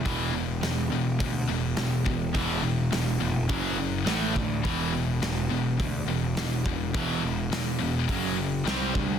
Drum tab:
HH |o-o-o-o-|o-o-o-o-|o-o-o-o-|o-o-o-o-|
SD |--o---o-|--o---o-|--o---o-|--o---o-|
BD |o---o--o|o---o--o|o---o--o|o---o--o|